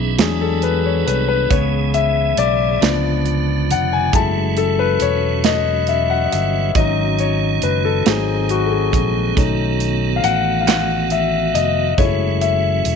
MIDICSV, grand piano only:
0, 0, Header, 1, 2, 480
1, 0, Start_track
1, 0, Tempo, 873362
1, 829, Time_signature, 6, 3, 24, 8
1, 7121, End_track
2, 0, Start_track
2, 0, Title_t, "Grand piano"
2, 0, Program_c, 0, 0
2, 0, Control_c, 0, 64, 127
2, 0, Note_on_c, 0, 52, 47
2, 0, Note_on_c, 0, 59, 40
2, 0, Note_on_c, 0, 63, 52
2, 84, Note_off_c, 0, 52, 0
2, 85, Note_off_c, 0, 59, 0
2, 86, Note_off_c, 0, 63, 0
2, 99, Note_on_c, 0, 54, 50
2, 103, Note_on_c, 0, 56, 45
2, 107, Note_on_c, 0, 62, 51
2, 110, Note_on_c, 0, 68, 70
2, 114, Control_c, 0, 64, 0
2, 201, Control_c, 0, 64, 127
2, 226, Note_on_c, 0, 69, 70
2, 233, Note_off_c, 0, 68, 0
2, 347, Note_on_c, 0, 71, 69
2, 351, Note_off_c, 0, 69, 0
2, 374, Note_off_c, 0, 71, 0
2, 469, Note_on_c, 0, 73, 65
2, 580, Note_off_c, 0, 73, 0
2, 584, Note_on_c, 0, 71, 73
2, 697, Note_off_c, 0, 71, 0
2, 705, Note_on_c, 0, 71, 80
2, 802, Note_off_c, 0, 54, 0
2, 804, Note_off_c, 0, 56, 0
2, 806, Note_off_c, 0, 62, 0
2, 819, Note_on_c, 0, 56, 41
2, 824, Note_on_c, 0, 59, 41
2, 826, Note_on_c, 0, 49, 50
2, 827, Note_on_c, 0, 73, 76
2, 831, Note_off_c, 0, 71, 0
2, 836, Control_c, 0, 64, 0
2, 926, Control_c, 0, 64, 127
2, 1051, Note_off_c, 0, 73, 0
2, 1068, Note_on_c, 0, 76, 88
2, 1309, Note_on_c, 0, 74, 95
2, 1316, Note_off_c, 0, 76, 0
2, 1523, Note_off_c, 0, 56, 0
2, 1525, Note_off_c, 0, 59, 0
2, 1526, Note_off_c, 0, 49, 0
2, 1545, Note_on_c, 0, 53, 50
2, 1548, Note_on_c, 0, 59, 44
2, 1549, Note_on_c, 0, 62, 59
2, 1556, Control_c, 0, 64, 0
2, 1653, Control_c, 0, 64, 127
2, 1768, Note_off_c, 0, 74, 0
2, 2040, Note_on_c, 0, 78, 84
2, 2159, Note_off_c, 0, 78, 0
2, 2159, Note_on_c, 0, 80, 84
2, 2246, Note_off_c, 0, 53, 0
2, 2247, Note_off_c, 0, 59, 0
2, 2248, Note_off_c, 0, 62, 0
2, 2267, Note_off_c, 0, 80, 0
2, 2272, Note_on_c, 0, 56, 47
2, 2273, Note_on_c, 0, 57, 44
2, 2277, Control_c, 0, 64, 0
2, 2277, Note_on_c, 0, 64, 46
2, 2280, Note_on_c, 0, 81, 79
2, 2366, Control_c, 0, 64, 127
2, 2515, Note_on_c, 0, 69, 80
2, 2522, Note_off_c, 0, 81, 0
2, 2590, Note_off_c, 0, 56, 0
2, 2591, Note_off_c, 0, 57, 0
2, 2593, Note_off_c, 0, 64, 0
2, 2633, Note_on_c, 0, 71, 85
2, 2636, Note_off_c, 0, 69, 0
2, 2755, Note_off_c, 0, 71, 0
2, 2757, Note_on_c, 0, 73, 88
2, 2977, Note_off_c, 0, 73, 0
2, 2995, Note_on_c, 0, 75, 89
2, 3216, Note_off_c, 0, 75, 0
2, 3235, Note_on_c, 0, 76, 84
2, 3352, Note_on_c, 0, 78, 72
2, 3356, Note_off_c, 0, 76, 0
2, 3427, Note_off_c, 0, 78, 0
2, 3431, Note_on_c, 0, 75, 53
2, 3470, Note_off_c, 0, 75, 0
2, 3474, Note_on_c, 0, 76, 81
2, 3709, Note_on_c, 0, 54, 47
2, 3714, Note_on_c, 0, 75, 83
2, 3715, Note_on_c, 0, 61, 42
2, 3716, Note_on_c, 0, 63, 49
2, 3717, Control_c, 0, 64, 0
2, 3719, Note_off_c, 0, 76, 0
2, 3828, Control_c, 0, 64, 127
2, 3935, Note_off_c, 0, 75, 0
2, 3954, Note_on_c, 0, 73, 76
2, 4194, Note_on_c, 0, 71, 68
2, 4199, Note_off_c, 0, 73, 0
2, 4313, Note_on_c, 0, 69, 70
2, 4316, Note_off_c, 0, 71, 0
2, 4407, Note_off_c, 0, 54, 0
2, 4410, Note_off_c, 0, 61, 0
2, 4411, Note_off_c, 0, 63, 0
2, 4432, Note_on_c, 0, 54, 46
2, 4435, Note_off_c, 0, 69, 0
2, 4435, Note_on_c, 0, 60, 47
2, 4437, Control_c, 0, 64, 0
2, 4437, Note_on_c, 0, 68, 72
2, 4439, Note_on_c, 0, 63, 55
2, 4523, Control_c, 0, 64, 127
2, 4674, Note_on_c, 0, 66, 74
2, 4680, Note_off_c, 0, 68, 0
2, 4750, Note_off_c, 0, 54, 0
2, 4751, Note_off_c, 0, 60, 0
2, 4753, Note_off_c, 0, 63, 0
2, 4755, Note_off_c, 0, 66, 0
2, 4758, Note_on_c, 0, 69, 49
2, 4789, Note_on_c, 0, 68, 56
2, 4793, Note_off_c, 0, 69, 0
2, 5012, Note_off_c, 0, 68, 0
2, 5142, Note_on_c, 0, 57, 44
2, 5148, Note_on_c, 0, 61, 42
2, 5149, Note_on_c, 0, 63, 48
2, 5157, Control_c, 0, 64, 0
2, 5243, Control_c, 0, 64, 127
2, 5464, Note_off_c, 0, 57, 0
2, 5467, Note_off_c, 0, 61, 0
2, 5468, Note_off_c, 0, 63, 0
2, 5585, Note_on_c, 0, 77, 73
2, 5626, Note_off_c, 0, 77, 0
2, 5627, Note_on_c, 0, 78, 97
2, 5832, Note_on_c, 0, 77, 69
2, 5835, Note_off_c, 0, 78, 0
2, 5867, Note_on_c, 0, 78, 91
2, 5869, Note_off_c, 0, 77, 0
2, 5921, Note_off_c, 0, 78, 0
2, 6109, Note_on_c, 0, 76, 85
2, 6343, Note_on_c, 0, 75, 77
2, 6355, Note_off_c, 0, 76, 0
2, 6584, Note_on_c, 0, 73, 77
2, 6586, Note_on_c, 0, 56, 45
2, 6589, Note_on_c, 0, 57, 41
2, 6592, Note_off_c, 0, 75, 0
2, 6594, Control_c, 0, 64, 0
2, 6594, Note_on_c, 0, 64, 57
2, 6681, Control_c, 0, 64, 127
2, 6824, Note_on_c, 0, 76, 77
2, 6832, Note_off_c, 0, 73, 0
2, 7121, Note_off_c, 0, 56, 0
2, 7121, Note_off_c, 0, 57, 0
2, 7121, Note_off_c, 0, 64, 0
2, 7121, Note_off_c, 0, 76, 0
2, 7121, End_track
0, 0, End_of_file